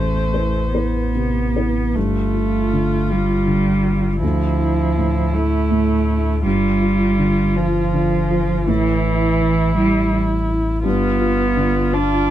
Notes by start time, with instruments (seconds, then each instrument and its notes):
Already playing: felt piano A1 E2, sub bass A1, cello A3, viola C5
0.33 felt piano E4 B4
0.73 cello B3, felt piano E4 B4
1.15 felt piano C3
1.56 felt piano E4 B4
1.95 sub bass G1, felt piano G2, cello A3, viola F4
2.34 felt piano F4
2.73 felt piano D3
3.10 cello G3, felt piano F4
3.47 felt piano D3
3.84 felt piano F4
4.22 sub bass D2, felt piano D2, cello F3, viola E4
4.59 felt piano E4
4.97 felt piano A2
5.33 cello A3, felt piano E4
5.70 felt piano A2
6.08 felt piano E4
6.45 sub bass G1, felt piano G2, cello G3, viola F4
6.81 felt piano F4
7.18 felt piano D3
7.56 cello F3, felt piano F4
7.93 felt piano D3
8.30 felt piano F4
8.67 sub bass A1, felt piano A2, cello E3, viola E4
9.04 felt piano E4
9.40 felt piano E3
9.76 cello G3, felt piano E4
10.12 felt piano E3
10.48 felt piano E4
10.84 sub bass G1, felt piano G2, cello B3, viola F4
11.20 felt piano F4
11.56 felt piano D3
11.92 cello D4, felt piano F4